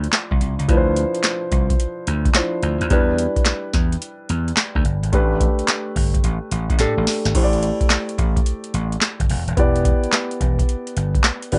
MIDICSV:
0, 0, Header, 1, 4, 480
1, 0, Start_track
1, 0, Tempo, 555556
1, 591, Time_signature, 4, 2, 24, 8
1, 10011, End_track
2, 0, Start_track
2, 0, Title_t, "Grand piano"
2, 0, Program_c, 0, 0
2, 0, Control_c, 0, 64, 127
2, 0, Note_on_c, 0, 53, 67
2, 0, Note_on_c, 0, 62, 68
2, 0, Note_on_c, 0, 64, 65
2, 0, Note_on_c, 0, 72, 77
2, 561, Note_off_c, 0, 62, 0
2, 564, Note_off_c, 0, 64, 0
2, 569, Note_off_c, 0, 72, 0
2, 577, Note_off_c, 0, 53, 0
2, 590, Note_on_c, 0, 53, 71
2, 595, Note_on_c, 0, 62, 58
2, 604, Note_on_c, 0, 64, 61
2, 611, Note_on_c, 0, 71, 61
2, 666, Note_on_c, 0, 72, 76
2, 675, Note_off_c, 0, 71, 0
2, 2002, Note_off_c, 0, 53, 0
2, 2004, Note_off_c, 0, 62, 0
2, 2009, Note_off_c, 0, 64, 0
2, 2032, Note_off_c, 0, 72, 0
2, 2034, Note_on_c, 0, 53, 56
2, 2036, Note_on_c, 0, 62, 52
2, 2044, Note_on_c, 0, 64, 51
2, 2045, Note_on_c, 0, 72, 67
2, 2505, Note_off_c, 0, 62, 0
2, 2509, Note_on_c, 0, 55, 72
2, 2511, Note_off_c, 0, 64, 0
2, 2512, Note_off_c, 0, 53, 0
2, 2518, Note_off_c, 0, 72, 0
2, 2518, Note_on_c, 0, 62, 67
2, 2520, Control_c, 0, 64, 0
2, 2524, Note_on_c, 0, 64, 64
2, 2529, Note_on_c, 0, 71, 77
2, 2652, Control_c, 0, 64, 127
2, 4395, Note_off_c, 0, 55, 0
2, 4400, Note_off_c, 0, 62, 0
2, 4403, Note_off_c, 0, 64, 0
2, 4405, Note_off_c, 0, 71, 0
2, 4425, Note_on_c, 0, 57, 68
2, 4430, Note_on_c, 0, 62, 58
2, 4437, Note_on_c, 0, 67, 68
2, 4441, Control_c, 0, 64, 0
2, 4444, Note_on_c, 0, 71, 76
2, 4579, Control_c, 0, 64, 127
2, 5839, Note_off_c, 0, 57, 0
2, 5842, Note_off_c, 0, 62, 0
2, 5845, Note_off_c, 0, 67, 0
2, 5849, Note_off_c, 0, 71, 0
2, 5869, Note_on_c, 0, 57, 57
2, 5873, Note_on_c, 0, 62, 51
2, 5874, Note_on_c, 0, 67, 53
2, 5881, Note_on_c, 0, 69, 60
2, 6332, Note_off_c, 0, 57, 0
2, 6345, Note_on_c, 0, 57, 67
2, 6346, Note_off_c, 0, 67, 0
2, 6352, Note_off_c, 0, 62, 0
2, 6353, Note_on_c, 0, 64, 66
2, 6356, Note_off_c, 0, 69, 0
2, 6359, Note_on_c, 0, 67, 58
2, 6363, Control_c, 0, 64, 0
2, 6366, Note_on_c, 0, 72, 59
2, 6422, Note_on_c, 0, 74, 76
2, 6432, Note_off_c, 0, 72, 0
2, 6491, Control_c, 0, 64, 127
2, 8234, Note_off_c, 0, 57, 0
2, 8237, Note_off_c, 0, 64, 0
2, 8240, Note_off_c, 0, 67, 0
2, 8267, Note_on_c, 0, 59, 71
2, 8272, Note_off_c, 0, 74, 0
2, 8275, Note_on_c, 0, 64, 66
2, 8281, Control_c, 0, 64, 0
2, 8283, Note_on_c, 0, 67, 63
2, 8287, Note_on_c, 0, 74, 82
2, 8457, Control_c, 0, 64, 127
2, 9916, Note_off_c, 0, 59, 0
2, 9920, Note_off_c, 0, 64, 0
2, 9923, Note_off_c, 0, 67, 0
2, 9926, Note_off_c, 0, 74, 0
2, 9954, Note_on_c, 0, 59, 64
2, 9957, Note_on_c, 0, 64, 57
2, 9960, Note_on_c, 0, 67, 56
2, 9963, Note_on_c, 0, 74, 63
2, 10011, Note_off_c, 0, 59, 0
2, 10011, Note_off_c, 0, 64, 0
2, 10011, Note_off_c, 0, 67, 0
2, 10011, Note_off_c, 0, 74, 0
2, 10011, End_track
3, 0, Start_track
3, 0, Title_t, "Slap bass"
3, 0, Program_c, 1, 36
3, 270, Note_on_c, 1, 36, 96
3, 332, Note_off_c, 1, 36, 0
3, 350, Note_on_c, 1, 36, 73
3, 470, Note_off_c, 1, 36, 0
3, 509, Note_on_c, 1, 37, 88
3, 572, Note_off_c, 1, 37, 0
3, 593, Note_on_c, 1, 38, 110
3, 895, Note_off_c, 1, 38, 0
3, 1310, Note_on_c, 1, 36, 84
3, 1493, Note_off_c, 1, 36, 0
3, 1792, Note_on_c, 1, 38, 79
3, 1975, Note_off_c, 1, 38, 0
3, 2270, Note_on_c, 1, 38, 84
3, 2390, Note_off_c, 1, 38, 0
3, 2429, Note_on_c, 1, 39, 95
3, 2492, Note_off_c, 1, 39, 0
3, 2509, Note_on_c, 1, 40, 98
3, 2812, Note_off_c, 1, 40, 0
3, 3230, Note_on_c, 1, 40, 84
3, 3413, Note_off_c, 1, 40, 0
3, 3712, Note_on_c, 1, 40, 88
3, 3894, Note_off_c, 1, 40, 0
3, 4108, Note_on_c, 1, 38, 91
3, 4172, Note_off_c, 1, 38, 0
3, 4188, Note_on_c, 1, 31, 91
3, 4309, Note_off_c, 1, 31, 0
3, 4344, Note_on_c, 1, 32, 88
3, 4409, Note_off_c, 1, 32, 0
3, 4431, Note_on_c, 1, 33, 107
3, 4733, Note_off_c, 1, 33, 0
3, 5150, Note_on_c, 1, 31, 92
3, 5333, Note_off_c, 1, 31, 0
3, 5389, Note_on_c, 1, 33, 97
3, 5510, Note_off_c, 1, 33, 0
3, 5629, Note_on_c, 1, 33, 79
3, 5749, Note_off_c, 1, 33, 0
3, 5787, Note_on_c, 1, 33, 91
3, 5851, Note_off_c, 1, 33, 0
3, 5868, Note_on_c, 1, 45, 95
3, 5989, Note_off_c, 1, 45, 0
3, 6027, Note_on_c, 1, 33, 93
3, 6090, Note_off_c, 1, 33, 0
3, 6266, Note_on_c, 1, 32, 89
3, 6330, Note_off_c, 1, 32, 0
3, 6351, Note_on_c, 1, 33, 103
3, 6653, Note_off_c, 1, 33, 0
3, 7069, Note_on_c, 1, 33, 85
3, 7253, Note_off_c, 1, 33, 0
3, 7551, Note_on_c, 1, 33, 88
3, 7734, Note_off_c, 1, 33, 0
3, 7949, Note_on_c, 1, 31, 84
3, 8012, Note_off_c, 1, 31, 0
3, 8033, Note_on_c, 1, 28, 91
3, 8152, Note_off_c, 1, 28, 0
3, 8187, Note_on_c, 1, 27, 94
3, 8251, Note_off_c, 1, 27, 0
3, 8271, Note_on_c, 1, 28, 98
3, 8573, Note_off_c, 1, 28, 0
3, 8991, Note_on_c, 1, 28, 80
3, 9174, Note_off_c, 1, 28, 0
3, 9475, Note_on_c, 1, 31, 88
3, 9656, Note_off_c, 1, 31, 0
3, 9956, Note_on_c, 1, 31, 91
3, 10011, Note_off_c, 1, 31, 0
3, 10011, End_track
4, 0, Start_track
4, 0, Title_t, "Drums"
4, 32, Note_on_c, 9, 42, 45
4, 110, Note_on_c, 9, 38, 115
4, 110, Note_on_c, 9, 39, 84
4, 112, Note_off_c, 9, 42, 0
4, 112, Note_on_c, 9, 42, 76
4, 117, Note_off_c, 9, 39, 0
4, 117, Note_on_c, 9, 39, 91
4, 197, Note_off_c, 9, 38, 0
4, 198, Note_off_c, 9, 42, 0
4, 203, Note_off_c, 9, 39, 0
4, 269, Note_on_c, 9, 36, 88
4, 354, Note_on_c, 9, 42, 62
4, 356, Note_off_c, 9, 36, 0
4, 441, Note_off_c, 9, 42, 0
4, 514, Note_on_c, 9, 42, 56
4, 593, Note_on_c, 9, 36, 111
4, 594, Note_off_c, 9, 42, 0
4, 594, Note_on_c, 9, 42, 71
4, 679, Note_off_c, 9, 36, 0
4, 680, Note_off_c, 9, 42, 0
4, 833, Note_on_c, 9, 42, 82
4, 919, Note_off_c, 9, 42, 0
4, 990, Note_on_c, 9, 42, 52
4, 1069, Note_off_c, 9, 42, 0
4, 1069, Note_on_c, 9, 42, 77
4, 1070, Note_on_c, 9, 38, 107
4, 1070, Note_on_c, 9, 39, 86
4, 1071, Note_off_c, 9, 39, 0
4, 1071, Note_on_c, 9, 39, 81
4, 1156, Note_off_c, 9, 38, 0
4, 1156, Note_off_c, 9, 42, 0
4, 1157, Note_off_c, 9, 39, 0
4, 1310, Note_on_c, 9, 36, 85
4, 1310, Note_on_c, 9, 42, 68
4, 1396, Note_off_c, 9, 36, 0
4, 1396, Note_off_c, 9, 42, 0
4, 1468, Note_on_c, 9, 36, 90
4, 1470, Note_on_c, 9, 42, 60
4, 1552, Note_off_c, 9, 42, 0
4, 1552, Note_on_c, 9, 42, 85
4, 1554, Note_off_c, 9, 36, 0
4, 1639, Note_off_c, 9, 42, 0
4, 1789, Note_on_c, 9, 42, 78
4, 1875, Note_off_c, 9, 42, 0
4, 1947, Note_on_c, 9, 36, 89
4, 1948, Note_on_c, 9, 42, 50
4, 2028, Note_on_c, 9, 38, 115
4, 2028, Note_on_c, 9, 39, 85
4, 2029, Note_off_c, 9, 42, 0
4, 2029, Note_on_c, 9, 42, 78
4, 2031, Note_off_c, 9, 39, 0
4, 2031, Note_on_c, 9, 39, 91
4, 2033, Note_off_c, 9, 36, 0
4, 2114, Note_off_c, 9, 38, 0
4, 2116, Note_off_c, 9, 42, 0
4, 2117, Note_off_c, 9, 39, 0
4, 2269, Note_on_c, 9, 42, 63
4, 2355, Note_off_c, 9, 42, 0
4, 2427, Note_on_c, 9, 42, 52
4, 2508, Note_off_c, 9, 42, 0
4, 2508, Note_on_c, 9, 42, 71
4, 2510, Note_on_c, 9, 36, 111
4, 2595, Note_off_c, 9, 42, 0
4, 2596, Note_off_c, 9, 36, 0
4, 2751, Note_on_c, 9, 42, 78
4, 2838, Note_off_c, 9, 42, 0
4, 2906, Note_on_c, 9, 36, 88
4, 2906, Note_on_c, 9, 42, 49
4, 2987, Note_off_c, 9, 42, 0
4, 2987, Note_on_c, 9, 38, 111
4, 2987, Note_on_c, 9, 39, 92
4, 2987, Note_on_c, 9, 42, 85
4, 2988, Note_off_c, 9, 39, 0
4, 2988, Note_on_c, 9, 39, 79
4, 2993, Note_off_c, 9, 36, 0
4, 3073, Note_off_c, 9, 42, 0
4, 3074, Note_off_c, 9, 38, 0
4, 3074, Note_off_c, 9, 39, 0
4, 3227, Note_on_c, 9, 38, 66
4, 3228, Note_on_c, 9, 42, 66
4, 3229, Note_on_c, 9, 36, 87
4, 3313, Note_off_c, 9, 38, 0
4, 3315, Note_off_c, 9, 42, 0
4, 3316, Note_off_c, 9, 36, 0
4, 3390, Note_on_c, 9, 42, 57
4, 3471, Note_off_c, 9, 42, 0
4, 3471, Note_on_c, 9, 42, 82
4, 3557, Note_off_c, 9, 42, 0
4, 3708, Note_on_c, 9, 42, 75
4, 3795, Note_off_c, 9, 42, 0
4, 3870, Note_on_c, 9, 42, 46
4, 3948, Note_on_c, 9, 38, 116
4, 3948, Note_on_c, 9, 39, 95
4, 3949, Note_off_c, 9, 42, 0
4, 3949, Note_on_c, 9, 42, 79
4, 3953, Note_off_c, 9, 39, 0
4, 3953, Note_on_c, 9, 39, 84
4, 4034, Note_off_c, 9, 38, 0
4, 4035, Note_off_c, 9, 42, 0
4, 4040, Note_off_c, 9, 39, 0
4, 4107, Note_on_c, 9, 36, 87
4, 4189, Note_on_c, 9, 42, 61
4, 4193, Note_off_c, 9, 36, 0
4, 4276, Note_off_c, 9, 42, 0
4, 4350, Note_on_c, 9, 42, 55
4, 4430, Note_off_c, 9, 42, 0
4, 4430, Note_on_c, 9, 42, 65
4, 4431, Note_on_c, 9, 36, 113
4, 4517, Note_off_c, 9, 36, 0
4, 4517, Note_off_c, 9, 42, 0
4, 4669, Note_on_c, 9, 36, 98
4, 4671, Note_on_c, 9, 42, 89
4, 4755, Note_off_c, 9, 36, 0
4, 4758, Note_off_c, 9, 42, 0
4, 4828, Note_on_c, 9, 42, 50
4, 4906, Note_on_c, 9, 39, 80
4, 4911, Note_off_c, 9, 39, 0
4, 4911, Note_off_c, 9, 42, 0
4, 4911, Note_on_c, 9, 38, 109
4, 4911, Note_on_c, 9, 39, 84
4, 4911, Note_on_c, 9, 42, 74
4, 4997, Note_off_c, 9, 38, 0
4, 4997, Note_off_c, 9, 39, 0
4, 4997, Note_off_c, 9, 42, 0
4, 5149, Note_on_c, 9, 36, 85
4, 5151, Note_on_c, 9, 46, 71
4, 5236, Note_off_c, 9, 36, 0
4, 5237, Note_off_c, 9, 46, 0
4, 5307, Note_on_c, 9, 36, 96
4, 5310, Note_on_c, 9, 42, 60
4, 5390, Note_off_c, 9, 42, 0
4, 5390, Note_on_c, 9, 42, 83
4, 5393, Note_off_c, 9, 36, 0
4, 5476, Note_off_c, 9, 42, 0
4, 5629, Note_on_c, 9, 42, 81
4, 5715, Note_off_c, 9, 42, 0
4, 5786, Note_on_c, 9, 36, 91
4, 5788, Note_on_c, 9, 42, 45
4, 5868, Note_off_c, 9, 42, 0
4, 5868, Note_on_c, 9, 38, 59
4, 5868, Note_on_c, 9, 42, 82
4, 5869, Note_on_c, 9, 39, 84
4, 5872, Note_off_c, 9, 36, 0
4, 5955, Note_off_c, 9, 38, 0
4, 5955, Note_off_c, 9, 42, 0
4, 5956, Note_off_c, 9, 39, 0
4, 6108, Note_on_c, 9, 46, 59
4, 6109, Note_on_c, 9, 38, 100
4, 6195, Note_off_c, 9, 46, 0
4, 6196, Note_off_c, 9, 38, 0
4, 6267, Note_on_c, 9, 38, 86
4, 6269, Note_on_c, 9, 42, 52
4, 6349, Note_off_c, 9, 42, 0
4, 6349, Note_on_c, 9, 42, 69
4, 6349, Note_on_c, 9, 49, 97
4, 6350, Note_on_c, 9, 36, 115
4, 6354, Note_off_c, 9, 38, 0
4, 6435, Note_off_c, 9, 42, 0
4, 6435, Note_off_c, 9, 49, 0
4, 6436, Note_off_c, 9, 36, 0
4, 6506, Note_on_c, 9, 42, 51
4, 6589, Note_off_c, 9, 42, 0
4, 6589, Note_on_c, 9, 42, 82
4, 6676, Note_off_c, 9, 42, 0
4, 6746, Note_on_c, 9, 36, 89
4, 6747, Note_on_c, 9, 42, 49
4, 6828, Note_off_c, 9, 42, 0
4, 6828, Note_on_c, 9, 38, 105
4, 6828, Note_on_c, 9, 39, 86
4, 6828, Note_on_c, 9, 42, 80
4, 6830, Note_off_c, 9, 39, 0
4, 6830, Note_on_c, 9, 39, 81
4, 6832, Note_off_c, 9, 36, 0
4, 6915, Note_off_c, 9, 38, 0
4, 6915, Note_off_c, 9, 42, 0
4, 6916, Note_off_c, 9, 39, 0
4, 6989, Note_on_c, 9, 42, 56
4, 7070, Note_on_c, 9, 36, 89
4, 7072, Note_off_c, 9, 42, 0
4, 7072, Note_on_c, 9, 42, 67
4, 7156, Note_off_c, 9, 36, 0
4, 7159, Note_off_c, 9, 42, 0
4, 7227, Note_on_c, 9, 36, 95
4, 7229, Note_on_c, 9, 42, 59
4, 7310, Note_off_c, 9, 42, 0
4, 7310, Note_on_c, 9, 42, 80
4, 7313, Note_off_c, 9, 36, 0
4, 7397, Note_off_c, 9, 42, 0
4, 7464, Note_on_c, 9, 42, 59
4, 7550, Note_off_c, 9, 42, 0
4, 7551, Note_on_c, 9, 42, 79
4, 7637, Note_off_c, 9, 42, 0
4, 7710, Note_on_c, 9, 42, 47
4, 7789, Note_on_c, 9, 38, 111
4, 7789, Note_on_c, 9, 39, 88
4, 7790, Note_off_c, 9, 42, 0
4, 7790, Note_on_c, 9, 42, 80
4, 7795, Note_off_c, 9, 39, 0
4, 7795, Note_on_c, 9, 39, 81
4, 7875, Note_off_c, 9, 38, 0
4, 7877, Note_off_c, 9, 42, 0
4, 7881, Note_off_c, 9, 39, 0
4, 7948, Note_on_c, 9, 36, 88
4, 7950, Note_on_c, 9, 42, 60
4, 8031, Note_on_c, 9, 46, 64
4, 8035, Note_off_c, 9, 36, 0
4, 8036, Note_off_c, 9, 42, 0
4, 8118, Note_off_c, 9, 46, 0
4, 8189, Note_on_c, 9, 42, 53
4, 8270, Note_off_c, 9, 42, 0
4, 8270, Note_on_c, 9, 42, 65
4, 8271, Note_on_c, 9, 36, 117
4, 8356, Note_off_c, 9, 42, 0
4, 8357, Note_off_c, 9, 36, 0
4, 8430, Note_on_c, 9, 42, 52
4, 8510, Note_on_c, 9, 36, 101
4, 8512, Note_off_c, 9, 42, 0
4, 8512, Note_on_c, 9, 42, 86
4, 8597, Note_off_c, 9, 36, 0
4, 8598, Note_off_c, 9, 42, 0
4, 8671, Note_on_c, 9, 42, 46
4, 8749, Note_off_c, 9, 42, 0
4, 8749, Note_on_c, 9, 38, 101
4, 8749, Note_on_c, 9, 39, 89
4, 8749, Note_on_c, 9, 42, 78
4, 8754, Note_off_c, 9, 39, 0
4, 8754, Note_on_c, 9, 39, 76
4, 8835, Note_off_c, 9, 38, 0
4, 8835, Note_off_c, 9, 42, 0
4, 8841, Note_off_c, 9, 39, 0
4, 8910, Note_on_c, 9, 42, 56
4, 8991, Note_on_c, 9, 36, 89
4, 8993, Note_off_c, 9, 42, 0
4, 8993, Note_on_c, 9, 42, 72
4, 9078, Note_off_c, 9, 36, 0
4, 9079, Note_off_c, 9, 42, 0
4, 9150, Note_on_c, 9, 36, 90
4, 9153, Note_on_c, 9, 42, 61
4, 9235, Note_off_c, 9, 42, 0
4, 9235, Note_on_c, 9, 42, 75
4, 9236, Note_off_c, 9, 36, 0
4, 9321, Note_off_c, 9, 42, 0
4, 9391, Note_on_c, 9, 42, 58
4, 9475, Note_off_c, 9, 42, 0
4, 9475, Note_on_c, 9, 42, 83
4, 9561, Note_off_c, 9, 42, 0
4, 9631, Note_on_c, 9, 36, 92
4, 9634, Note_on_c, 9, 42, 47
4, 9711, Note_on_c, 9, 38, 115
4, 9711, Note_on_c, 9, 39, 93
4, 9713, Note_off_c, 9, 42, 0
4, 9713, Note_on_c, 9, 42, 79
4, 9717, Note_off_c, 9, 36, 0
4, 9717, Note_off_c, 9, 39, 0
4, 9717, Note_on_c, 9, 39, 86
4, 9798, Note_off_c, 9, 38, 0
4, 9799, Note_off_c, 9, 42, 0
4, 9803, Note_off_c, 9, 39, 0
4, 9871, Note_on_c, 9, 42, 64
4, 9952, Note_on_c, 9, 46, 64
4, 9957, Note_off_c, 9, 42, 0
4, 10011, Note_off_c, 9, 46, 0
4, 10011, End_track
0, 0, End_of_file